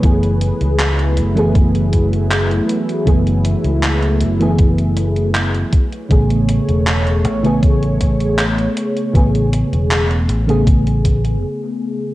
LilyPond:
<<
  \new Staff \with { instrumentName = "Analog synth pad" } { \time 4/4 \key a \major \tempo 4 = 79 << { <fis a e' b'>1~ | <fis a e' b'>2.~ <fis a e' b'>8 <a cis''>8~ | <a cis''>1~ | <a cis''>2. r4 | } \\ { gis'1~ | gis'1~ | gis'1~ | gis'2. r4 | } >> }
  \new Staff \with { instrumentName = "FM electric piano" } { \time 4/4 \key a \major <e a b gis'>4.~ <e a b gis'>16 <e a b gis'>2~ <e a b gis'>16 | <e a b gis'>4.~ <e a b gis'>16 <e a b gis'>4.~ <e a b gis'>16 r8 | <cis a b gis'>4.~ <cis a b gis'>16 <cis a b gis'>2~ <cis a b gis'>16 | <cis a b gis'>4.~ <cis a b gis'>16 <cis a b gis'>4~ <cis a b gis'>16 r4 | }
  \new Staff \with { instrumentName = "Fingered electric bass" } { \clef bass \time 4/4 \key a \major fis,,8 r16 cis,8. fis,,4.~ fis,,16 r8. | fis,,8 r16 cis,8. fis,,4.~ fis,,16 r8. | a,,8 r16 e,,8. a,,4.~ a,,16 r8. | a,,8 r16 e,,8. a,,4. r4 | }
  \new DrumStaff \with { instrumentName = "Drums" } \drummode { \time 4/4 <hh bd>16 hh16 hh16 hh16 <hc hh>16 hh16 hh16 hh16 <hh bd>16 hh16 <hh bd>16 hh16 <hc hh>16 hh16 hh16 hh16 | <hh bd>16 hh16 hh16 hh16 <hc hh>16 hh16 hh16 hh16 <hh bd>16 hh16 hh16 hh16 <hc hh>16 hh16 <hh bd>16 hh16 | <hh bd>16 hh16 hh16 hh16 <hc hh>16 hh16 hh16 hh16 <hh bd>16 hh16 <hh bd>16 hh16 <hc hh>16 hh16 hh16 hh16 | <hh bd>16 hh16 hh16 hh16 <hc hh>16 hh16 hh16 hh16 <hh bd>16 hh16 <hh bd>16 hh16 r4 | }
>>